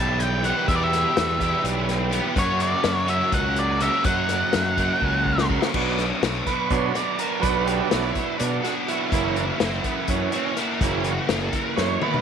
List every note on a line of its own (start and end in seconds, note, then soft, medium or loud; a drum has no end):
0.00 0.51 B1 medium
0.00 0.42 E2 medium
0.00 0.43 B2 medium
0.00 0.43 E3 medium
0.00 0.44 G3 medium
0.00 0.43 B3 medium
0.00 2.32 E4 medium
0.00 0.42 G4 medium
0.00 2.32 G4 medium
0.00 2.33 B4 medium
0.00 0.21 A5 loud
0.20 0.42 G5 loud
0.20 closed hi-hat medium
0.43 0.66 E2 medium
0.43 0.67 B2 medium
0.43 0.67 E3 medium
0.43 0.68 G3 medium
0.43 0.68 B3 medium
0.43 0.68 G4 medium
0.43 0.67 F#5 medium
0.43 closed hi-hat medium
0.67 1.39 E2 medium
0.67 1.05 E2 loud
0.67 1.39 B2 medium
0.67 1.40 E3 loud
0.67 1.40 G3 medium
0.67 1.40 B3 medium
0.67 1.41 G4 loud
0.67 0.75 E5 medium
0.67 kick loud
0.67 closed hi-hat medium
0.75 0.82 D5 medium
0.83 1.61 E5 loud
0.93 snare soft
0.93 closed hi-hat medium
1.17 1.53 E2 loud
1.17 snare loud
1.17 closed hi-hat medium
1.40 2.11 E2 medium
1.40 2.11 B2 medium
1.40 2.12 E3 medium
1.40 2.12 G3 medium
1.40 2.11 B3 medium
1.40 2.10 G4 medium
1.40 kick medium
1.40 closed hi-hat medium
1.64 2.19 B1 medium
1.64 closed hi-hat medium
1.89 snare soft
1.89 closed hi-hat medium
2.11 2.35 B2 medium
2.11 2.36 E3 medium
2.11 2.36 G3 medium
2.11 2.35 B3 medium
2.11 2.35 G4 medium
2.11 closed hi-hat medium
2.15 2.34 E2 medium
2.34 3.10 F#2 loud
2.34 2.73 F#2 loud
2.34 3.07 C#3 loud
2.34 5.71 C#3 medium
2.34 3.09 F#3 loud
2.34 3.08 A#3 medium
2.34 3.07 C#4 medium
2.34 5.70 F#4 medium
2.34 3.06 F#4 loud
2.34 5.71 A#4 medium
2.34 kick loud
2.34 closed hi-hat loud
2.39 2.62 C#5 medium
2.60 2.95 D5 medium
2.60 closed hi-hat medium
2.84 3.21 F#2 loud
2.84 snare loud
2.84 closed hi-hat medium
2.95 3.06 C#5 medium
3.06 3.78 F#2 medium
3.06 3.79 C#3 medium
3.06 3.81 F#3 medium
3.06 3.79 A#3 medium
3.06 3.79 C#4 medium
3.06 3.83 F#4 medium
3.06 3.32 E5 loud
3.06 closed hi-hat medium
3.32 3.88 C#2 medium
3.32 3.58 F#5 loud
3.32 kick loud
3.32 closed hi-hat loud
3.56 3.83 D5 medium
3.56 closed hi-hat medium
3.80 4.02 F#2 medium
3.80 4.04 C#3 medium
3.80 4.05 F#3 medium
3.80 4.04 A#3 medium
3.80 4.05 C#4 medium
3.80 4.07 F#4 medium
3.80 4.05 E5 medium
3.80 closed hi-hat medium
4.03 4.74 F#2 medium
4.03 4.42 F#2 loud
4.03 4.76 C#3 loud
4.03 4.76 F#3 loud
4.03 4.77 A#3 medium
4.03 4.77 C#4 loud
4.03 5.46 F#5 loud
4.03 kick loud
4.03 closed hi-hat loud
4.08 4.77 F#4 loud
4.29 snare soft
4.29 closed hi-hat medium
4.53 4.91 F#2 loud
4.53 snare medium
4.53 closed hi-hat medium
4.76 5.48 F#2 medium
4.76 5.48 C#3 medium
4.76 5.48 F#3 medium
4.76 5.49 A#3 medium
4.76 5.49 C#4 medium
4.76 5.48 F#4 medium
4.76 kick medium
4.76 closed hi-hat medium
5.02 5.57 C#2 loud
5.02 kick medium
5.26 kick medium
5.38 snare medium
5.50 5.74 F#2 medium
5.50 5.73 C#3 medium
5.50 5.74 F#3 medium
5.50 5.73 A#3 medium
5.50 5.73 C#4 medium
5.50 5.72 F#4 medium
5.50 kick medium
5.62 snare medium
5.74 6.11 B1 medium
5.74 6.21 B2 medium
5.74 6.06 F#3 medium
5.74 6.22 F#3 medium
5.74 6.06 B3 medium
5.74 6.00 B3 medium
5.74 6.06 D4 medium
5.74 5.99 D4 loud
5.74 5.97 F#4 medium
5.74 kick loud
5.74 crash loud
5.98 6.23 B3 medium
5.98 6.24 D4 medium
5.98 6.25 F#4 medium
5.98 snare soft
5.98 closed hi-hat medium
6.22 6.41 B1 medium
6.22 6.70 B2 medium
6.22 7.18 F#3 medium
6.22 6.48 B3 medium
6.22 6.46 D4 loud
6.22 6.45 F#4 loud
6.22 snare loud
6.22 closed hi-hat medium
6.46 6.96 B3 medium
6.46 6.95 D4 medium
6.46 6.94 F#4 medium
6.46 6.71 B4 medium
6.46 kick medium
6.46 snare soft
6.46 closed hi-hat medium
6.70 6.89 B2 medium
6.70 6.92 F#3 soft
6.70 6.92 B3 soft
6.70 6.93 D4 medium
6.70 6.96 C#5 loud
6.70 kick loud
6.70 closed hi-hat medium
6.94 7.19 B3 medium
6.94 7.20 D4 medium
6.94 7.22 F#4 medium
6.94 7.20 D5 loud
6.94 snare soft
6.94 closed hi-hat medium
7.19 7.43 F#3 medium
7.19 7.44 B3 medium
7.19 7.44 D4 medium
7.19 7.46 F#4 medium
7.19 7.42 A#4 medium
7.19 closed hi-hat medium
7.40 7.80 B1 loud
7.40 7.90 B2 medium
7.40 8.10 F#3 medium
7.40 8.11 B3 soft
7.40 8.11 D4 medium
7.40 7.67 B4 medium
7.40 kick loud
7.40 closed hi-hat loud
7.44 7.92 F#3 loud
7.44 7.69 B3 medium
7.44 7.67 D4 loud
7.44 7.66 F#4 loud
7.67 7.91 B3 medium
7.67 7.93 D4 medium
7.67 7.94 F#4 medium
7.67 7.89 G4 loud
7.67 closed hi-hat medium
7.91 8.11 B1 medium
7.91 8.40 B2 medium
7.91 8.87 F#3 loud
7.91 8.18 B3 loud
7.91 8.16 D4 loud
7.91 8.37 E4 medium
7.91 8.15 F#4 medium
7.91 snare loud
7.91 closed hi-hat medium
8.15 8.66 B3 medium
8.15 8.64 D4 medium
8.15 8.63 F#4 medium
8.15 kick medium
8.15 closed hi-hat medium
8.39 8.59 B2 medium
8.39 8.62 D4 medium
8.39 closed hi-hat loud
8.63 8.88 B3 medium
8.63 8.89 D4 medium
8.63 8.91 F#4 medium
8.63 8.75 F#4 medium
8.63 snare soft
8.63 closed hi-hat medium
8.88 9.13 F#3 medium
8.88 9.11 B3 medium
8.88 9.12 D4 medium
8.88 10.13 E4 medium
8.88 9.14 F#4 medium
8.88 closed hi-hat medium
9.11 9.49 F#1 loud
9.11 9.60 F#2 medium
9.11 9.60 C#3 loud
9.11 9.38 E3 medium
9.11 9.45 E3 medium
9.11 9.38 A#3 medium
9.11 9.45 A#3 medium
9.11 9.45 C#4 medium
9.11 9.36 E4 loud
9.11 9.35 F#4 loud
9.11 kick loud
9.11 closed hi-hat medium
9.35 9.61 E3 medium
9.35 9.62 A#3 medium
9.35 9.62 E4 medium
9.35 9.63 F#4 medium
9.35 closed hi-hat soft
9.60 9.79 F#1 medium
9.60 10.09 F#2 medium
9.60 10.09 C#3 loud
9.60 9.87 E3 loud
9.60 9.86 A#3 medium
9.60 9.85 E4 loud
9.60 9.84 F#4 loud
9.60 snare loud
9.60 closed hi-hat medium
9.84 10.35 E3 medium
9.84 10.34 A#3 medium
9.84 10.33 E4 medium
9.84 10.32 F#4 medium
9.84 kick medium
9.84 closed hi-hat medium
10.08 10.27 F#2 medium
10.08 10.54 C#4 medium
10.08 kick loud
10.08 closed hi-hat medium
10.32 10.56 A#3 medium
10.32 10.58 E4 medium
10.32 10.59 F#4 medium
10.32 closed hi-hat medium
10.36 10.55 E3 medium
10.56 10.81 E3 medium
10.56 10.81 A#3 medium
10.56 10.82 E4 medium
10.56 10.84 F#4 medium
10.56 snare soft
10.56 closed hi-hat medium
10.81 11.18 F#1 loud
10.81 11.27 F#2 medium
10.81 11.28 C#3 loud
10.81 11.14 E3 medium
10.81 11.06 E3 medium
10.81 11.14 A#3 soft
10.81 11.06 A#3 loud
10.81 11.15 C#4 medium
10.81 11.04 E4 loud
10.81 11.04 F#4 loud
10.81 kick loud
10.81 closed hi-hat loud
11.04 11.29 E3 medium
11.04 11.29 A#3 medium
11.04 11.30 E4 medium
11.04 11.31 F#4 medium
11.04 closed hi-hat medium
11.28 11.48 F#1 medium
11.28 11.77 F#2 medium
11.28 11.78 C#3 medium
11.28 11.56 E3 medium
11.28 11.55 A#3 loud
11.28 11.54 E4 medium
11.28 11.53 F#4 loud
11.28 snare loud
11.28 closed hi-hat medium
11.53 12.03 A#3 medium
11.53 12.01 E4 medium
11.53 12.01 F#4 medium
11.53 kick medium
11.53 closed hi-hat medium
11.57 12.04 E3 medium
11.76 11.96 F#2 medium
11.76 12.00 C#5 loud
11.76 snare medium
12.02 12.21 E3 medium
12.02 12.21 A#3 medium
12.02 12.21 E4 medium
12.02 12.21 F#4 medium
12.02 12.21 B4 medium
12.02 high tom medium
12.14 mid tom medium